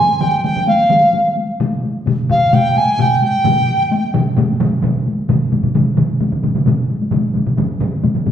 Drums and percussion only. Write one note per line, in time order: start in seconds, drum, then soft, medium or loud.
0.10 taiko high soft
0.21 taiko mid medium
0.21 taiko high medium
0.33 taiko high soft
0.44 taiko mid medium
0.44 taiko high medium
0.56 taiko mid medium
0.56 taiko high soft
0.68 taiko high medium
0.79 taiko high soft
0.90 taiko mid medium
0.90 taiko high medium
1.14 taiko high medium
1.26 taiko high soft
1.37 taiko high medium
1.49 taiko high soft
1.61 taiko low-mid loud
1.61 taiko high medium
1.72 taiko high soft
1.83 taiko high medium
1.95 taiko high soft
2.06 taiko low-mid medium
2.06 taiko high medium
2.18 taiko high soft
2.29 taiko low-mid loud
2.29 taiko high soft
2.42 taiko high soft
2.53 taiko low-mid loud
2.53 taiko high medium
2.64 taiko high soft
2.76 taiko high medium
2.99 taiko low-mid loud
2.99 taiko high medium
3.22 taiko high medium
3.34 taiko high soft
3.44 taiko low-mid medium
3.44 taiko mid loud
3.44 taiko high medium
3.57 taiko high soft
3.68 taiko high medium
3.80 taiko high soft
3.92 taiko high medium
4.03 taiko high soft
4.14 taiko low-mid loud
4.14 taiko mid medium
4.14 taiko high medium
4.26 taiko high soft
4.37 taiko low-mid loud
4.37 taiko mid medium
4.37 taiko high medium
4.49 taiko high soft
4.60 taiko low-mid medium
4.60 taiko mid loud
4.60 taiko high medium
4.82 taiko low-mid medium
4.82 taiko mid medium
4.82 taiko high medium
4.95 taiko high soft
5.06 taiko high medium
5.18 taiko high soft
5.29 taiko low-mid medium
5.29 taiko mid medium
5.29 taiko high medium
5.52 taiko low-mid medium
5.52 taiko mid medium
5.52 taiko high medium
5.63 taiko low-mid medium
5.63 taiko mid medium
5.63 taiko high soft
5.75 taiko low-mid medium
5.75 taiko mid medium
5.75 taiko high medium
5.97 taiko low-mid medium
5.97 taiko mid medium
5.97 taiko high soft
6.09 taiko high medium
6.20 taiko low-mid medium
6.20 taiko mid medium
6.20 taiko high medium
6.32 taiko low-mid medium
6.32 taiko mid medium
6.44 taiko low-mid medium
6.44 taiko mid medium
6.44 taiko high soft
6.55 taiko low-mid medium
6.55 taiko mid medium
6.55 taiko high soft
6.66 taiko low-mid medium
6.66 taiko mid medium
6.66 taiko high medium
6.90 taiko high medium
7.02 taiko high medium
7.11 taiko low-mid medium
7.11 taiko mid medium
7.11 taiko high medium
7.34 taiko low-mid medium
7.34 taiko mid medium
7.34 taiko high medium
7.46 taiko low-mid medium
7.46 taiko mid medium
7.46 taiko high medium
7.57 taiko low-mid medium
7.57 taiko mid medium
7.57 taiko high medium
7.81 taiko low-mid medium
7.81 taiko mid medium
7.81 taiko high medium
7.93 taiko high medium
8.03 taiko low-mid medium
8.03 taiko mid medium
8.03 taiko high medium
8.15 taiko low-mid medium
8.15 taiko mid medium
8.26 taiko low-mid medium
8.26 taiko mid medium
8.26 taiko high medium